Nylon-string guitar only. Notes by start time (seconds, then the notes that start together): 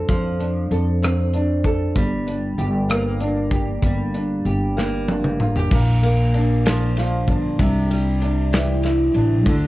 Already playing: C4 D4 A4
0.09 F3
0.39 D4
0.71 A4
1.02 C4
1.34 D4
1.65 A4
1.96 G3
2.27 D4
2.58 G4
2.89 A#3
3.21 D4
3.52 G4
3.83 G3
4.15 D4
4.46 G4
4.77 A#3
5.08 D4
5.40 F4
5.56 G4
5.72 A#2
6.03 A#3
6.34 D4
6.66 F3
6.97 F4
7.29 D4
7.60 C3
7.91 G3
8.22 D4
8.53 E3
8.84 E4
9.15 D4
9.47 D3